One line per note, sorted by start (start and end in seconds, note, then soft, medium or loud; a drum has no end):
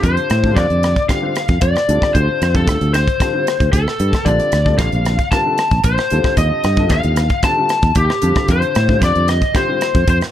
0.00 0.16 F2 loud
0.00 0.30 D3 medium
0.00 0.30 G3 medium
0.00 0.30 C4 medium
0.00 0.31 F4 medium
0.00 0.31 A4 medium
0.00 kick medium
0.00 closed hi-hat medium
0.04 0.58 C5 medium
0.17 closed hi-hat soft
0.30 0.57 A2 medium
0.30 cross-stick medium
0.30 closed hi-hat medium
0.44 0.90 D3 medium
0.44 0.90 G3 medium
0.44 0.90 C4 medium
0.44 0.90 F4 medium
0.44 0.91 A4 medium
0.44 kick medium
0.56 0.69 F2 loud
0.56 1.05 D5 medium
0.56 kick loud
0.56 cross-stick medium
0.56 closed hi-hat medium
0.70 0.94 F2 medium
0.70 closed hi-hat soft
0.83 cross-stick medium
0.83 closed hi-hat medium
0.96 kick medium
0.96 closed hi-hat soft
1.08 1.18 D3 medium
1.08 1.19 G3 medium
1.08 1.19 C4 medium
1.08 1.19 F4 medium
1.08 1.19 G4 medium
1.08 1.62 F5 medium
1.08 kick medium
1.08 cross-stick medium
1.08 closed hi-hat medium
1.22 1.31 D3 medium
1.22 1.32 G3 medium
1.22 1.32 C4 medium
1.22 1.32 F4 medium
1.22 1.32 C5 medium
1.36 1.42 F4 soft
1.36 1.43 A4 soft
1.36 cross-stick medium
1.36 closed hi-hat medium
1.48 1.61 F2 medium
1.48 kick medium
1.48 closed hi-hat soft
1.61 1.74 F2 medium
1.61 2.16 D5 medium
1.61 kick loud
1.61 closed hi-hat medium
1.76 cross-stick medium
1.76 closed hi-hat soft
1.88 2.01 D2 medium
1.88 2.41 D3 medium
1.88 2.41 G3 medium
1.88 2.41 C4 medium
1.88 2.42 F4 medium
1.88 2.42 A4 medium
1.88 closed hi-hat medium
2.02 muted fingered electric bass stroke soft
2.02 kick medium
2.02 cross-stick medium
2.14 2.27 D2 loud
2.14 2.55 C5 medium
2.14 kick medium
2.14 closed hi-hat medium
2.42 2.68 F2 medium
2.42 cross-stick medium
2.42 closed hi-hat medium
2.54 3.00 D3 medium
2.54 3.01 G3 medium
2.54 3.01 C4 medium
2.54 3.01 F4 medium
2.54 2.94 A4 medium
2.54 3.01 C5 medium
2.54 kick medium
2.54 closed hi-hat soft
2.68 2.80 D2 medium
2.68 kick loud
2.68 cross-stick medium
2.68 closed hi-hat medium
2.81 3.05 D2 medium
2.81 closed hi-hat soft
2.94 3.69 C5 medium
2.94 cross-stick medium
2.94 closed hi-hat medium
3.08 kick medium
3.08 closed hi-hat soft
3.20 3.30 D3 medium
3.20 3.30 G3 medium
3.20 3.30 C4 medium
3.20 3.30 F4 medium
3.20 3.30 A4 medium
3.20 kick medium
3.20 cross-stick medium
3.20 closed hi-hat medium
3.33 3.43 D3 medium
3.33 3.43 G3 medium
3.33 3.43 C4 medium
3.33 3.43 F4 medium
3.33 3.44 C5 medium
3.47 3.53 F4 soft
3.47 3.54 A4 soft
3.47 cross-stick medium
3.47 closed hi-hat medium
3.60 3.72 D2 medium
3.60 kick medium
3.60 closed hi-hat soft
3.72 3.85 D2 medium
3.72 4.27 A4 medium
3.72 kick loud
3.72 closed hi-hat medium
3.88 cross-stick medium
4.00 4.12 G2 loud
4.00 closed hi-hat medium
4.13 muted fingered electric bass stroke soft
4.13 kick medium
4.13 cross-stick medium
4.13 closed hi-hat soft
4.25 4.39 A#1 loud
4.25 4.53 D3 medium
4.25 4.54 G3 medium
4.25 4.54 C4 medium
4.25 4.54 F4 medium
4.25 4.54 A4 medium
4.25 4.78 D5 medium
4.25 kick medium
4.25 closed hi-hat medium
4.40 closed hi-hat soft
4.52 4.79 D2 medium
4.52 cross-stick medium
4.52 closed hi-hat medium
4.65 5.11 D3 medium
4.65 5.12 G3 medium
4.65 5.12 C4 medium
4.65 5.12 F4 medium
4.65 5.12 A4 medium
4.65 kick medium
4.79 4.91 A#1 loud
4.79 5.28 F5 medium
4.79 kick loud
4.79 cross-stick medium
4.79 closed hi-hat medium
4.92 5.17 A#1 medium
4.92 closed hi-hat soft
5.05 cross-stick medium
5.05 closed hi-hat medium
5.19 kick medium
5.19 closed hi-hat soft
5.32 5.41 D3 medium
5.32 5.41 G3 medium
5.32 5.42 C4 medium
5.32 5.42 F4 medium
5.32 5.42 A#4 medium
5.32 5.81 A5 medium
5.32 kick medium
5.32 cross-stick medium
5.32 closed hi-hat medium
5.46 5.54 D3 medium
5.46 5.55 G3 medium
5.46 5.55 C4 medium
5.46 5.55 F4 medium
5.46 5.55 A4 medium
5.58 5.65 F4 soft
5.58 cross-stick medium
5.58 closed hi-hat medium
5.71 5.83 A#1 medium
5.71 kick medium
5.71 closed hi-hat soft
5.84 5.97 A#1 medium
5.84 6.34 C5 medium
5.84 kick loud
5.84 closed hi-hat medium
5.98 cross-stick medium
5.98 closed hi-hat soft
6.10 6.24 D#2 medium
6.10 6.64 D3 medium
6.10 6.64 G3 medium
6.10 6.65 C4 medium
6.10 6.64 F4 medium
6.10 6.65 A4 medium
6.10 closed hi-hat medium
6.24 kick medium
6.24 cross-stick medium
6.37 6.50 D#2 loud
6.37 6.92 D#5 medium
6.37 kick medium
6.37 closed hi-hat medium
6.64 6.90 G2 medium
6.64 cross-stick medium
6.64 closed hi-hat medium
6.77 7.24 D3 medium
6.77 7.24 G3 medium
6.77 7.24 C4 medium
6.77 7.24 F4 medium
6.77 7.24 A4 medium
6.77 kick medium
6.77 closed hi-hat soft
6.90 7.03 D#2 medium
6.90 7.41 F5 medium
6.90 kick loud
6.90 cross-stick medium
6.90 closed hi-hat medium
7.03 7.28 D#2 medium
7.03 closed hi-hat soft
7.16 cross-stick medium
7.16 closed hi-hat medium
7.30 kick medium
7.30 closed hi-hat soft
7.43 7.53 D3 medium
7.43 7.53 G3 medium
7.43 7.53 C4 medium
7.43 7.53 F4 medium
7.43 7.54 A4 medium
7.43 7.93 A5 medium
7.43 kick medium
7.43 cross-stick medium
7.43 closed hi-hat medium
7.57 7.66 D3 medium
7.57 7.66 G3 medium
7.57 7.66 C4 medium
7.57 7.67 F4 medium
7.57 7.67 A4 medium
7.69 7.76 F4 soft
7.69 7.77 A4 soft
7.69 cross-stick medium
7.69 closed hi-hat medium
7.82 7.95 D#2 medium
7.82 kick medium
7.82 closed hi-hat soft
7.95 8.08 D#2 medium
7.95 8.51 G4 medium
7.95 kick loud
7.95 closed hi-hat loud
8.10 cross-stick medium
8.22 8.35 F2 medium
8.22 8.75 D3 medium
8.22 8.75 G3 medium
8.22 8.75 C4 medium
8.22 8.76 F4 medium
8.22 8.76 A4 medium
8.22 closed hi-hat medium
8.36 muted fingered electric bass stroke soft
8.36 kick medium
8.36 cross-stick medium
8.36 closed hi-hat soft
8.48 8.61 F2 loud
8.48 8.99 C5 medium
8.48 kick medium
8.48 closed hi-hat medium
8.62 closed hi-hat soft
8.75 9.02 A2 medium
8.75 cross-stick medium
8.75 closed hi-hat medium
8.88 9.35 D3 medium
8.88 9.35 G3 medium
8.88 9.35 C4 medium
8.88 9.35 F4 medium
8.88 9.36 C5 medium
8.88 kick medium
9.02 9.14 F2 loud
9.02 9.28 D5 medium
9.02 kick loud
9.02 cross-stick medium
9.02 closed hi-hat medium
9.15 9.40 F2 medium
9.15 closed hi-hat soft
9.28 9.56 D#5 medium
9.28 cross-stick medium
9.28 closed hi-hat medium
9.41 kick medium
9.41 closed hi-hat soft
9.54 9.64 D3 medium
9.54 9.64 G3 medium
9.54 9.65 C4 medium
9.54 9.65 F4 medium
9.54 9.65 G4 medium
9.54 10.09 C5 medium
9.54 kick medium
9.54 cross-stick medium
9.54 closed hi-hat medium
9.68 9.77 D3 medium
9.68 9.77 G3 medium
9.68 9.78 C4 medium
9.68 9.78 F4 medium
9.68 9.78 C5 medium
9.81 9.89 F4 soft
9.81 9.89 A4 soft
9.81 cross-stick medium
9.81 closed hi-hat medium
9.95 10.07 F2 medium
9.95 kick medium
9.95 closed hi-hat soft
10.08 10.20 F2 medium
10.08 10.17 C5 medium
10.08 kick loud
10.08 closed hi-hat medium
10.21 cross-stick medium
10.21 closed hi-hat soft